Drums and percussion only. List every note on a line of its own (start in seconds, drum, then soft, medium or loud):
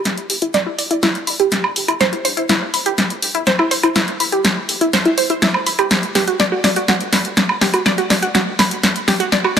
0.05 snare soft
0.05 closed hi-hat medium
0.18 closed hi-hat soft
0.30 open hi-hat loud
0.42 closed hi-hat medium
0.54 snare medium
0.54 closed hi-hat medium
0.79 open hi-hat medium
0.91 closed hi-hat medium
1.03 snare medium
1.03 closed hi-hat medium
1.15 closed hi-hat soft
1.27 open hi-hat loud
1.40 closed hi-hat soft
1.52 snare medium
1.52 closed hi-hat medium
1.64 high woodblock medium
1.76 open hi-hat loud
1.88 closed hi-hat medium
1.88 high woodblock medium
2.01 snare medium
2.01 closed hi-hat medium
2.13 closed hi-hat soft
2.25 open hi-hat loud
2.37 closed hi-hat medium
2.49 snare medium
2.49 closed hi-hat medium
2.74 open hi-hat medium
2.86 closed hi-hat medium
2.98 snare medium
2.98 closed hi-hat medium
3.10 closed hi-hat soft
3.22 open hi-hat loud
3.35 closed hi-hat soft
3.47 snare medium
3.47 closed hi-hat medium
3.59 high woodblock medium
3.71 open hi-hat loud
3.83 closed hi-hat soft
3.83 high woodblock medium
3.96 snare medium
3.96 closed hi-hat medium
4.08 closed hi-hat soft
4.20 open hi-hat loud
4.32 closed hi-hat soft
4.45 snare medium
4.45 closed hi-hat medium
4.69 open hi-hat medium
4.81 closed hi-hat soft
4.93 snare medium
4.93 closed hi-hat medium
5.05 closed hi-hat soft
5.18 open hi-hat loud
5.30 closed hi-hat soft
5.42 snare medium
5.42 closed hi-hat medium
5.54 high woodblock medium
5.66 open hi-hat loud
5.79 closed hi-hat soft
5.79 high woodblock medium
5.91 snare medium
5.91 closed hi-hat medium
6.03 closed hi-hat soft
6.15 snare medium
6.15 open hi-hat loud
6.28 closed hi-hat soft
6.40 snare medium
6.40 closed hi-hat medium
6.64 snare medium
6.64 open hi-hat medium
6.76 closed hi-hat medium
6.88 snare medium
6.88 closed hi-hat medium
7.01 closed hi-hat soft
7.13 snare medium
7.13 open hi-hat loud
7.25 closed hi-hat medium
7.37 snare medium
7.37 closed hi-hat medium
7.49 high woodblock medium
7.61 snare medium
7.61 open hi-hat medium
7.74 closed hi-hat medium
7.74 high woodblock medium
7.86 snare medium
7.86 closed hi-hat medium
7.98 closed hi-hat soft
8.10 snare medium
8.10 open hi-hat loud
8.23 closed hi-hat medium
8.35 snare medium
8.35 closed hi-hat medium
8.59 snare medium
8.59 open hi-hat medium
8.71 closed hi-hat medium
8.83 snare medium
8.83 closed hi-hat medium
8.96 closed hi-hat soft
9.08 snare medium
9.08 open hi-hat loud
9.20 closed hi-hat medium
9.32 snare medium
9.32 closed hi-hat medium
9.44 high woodblock medium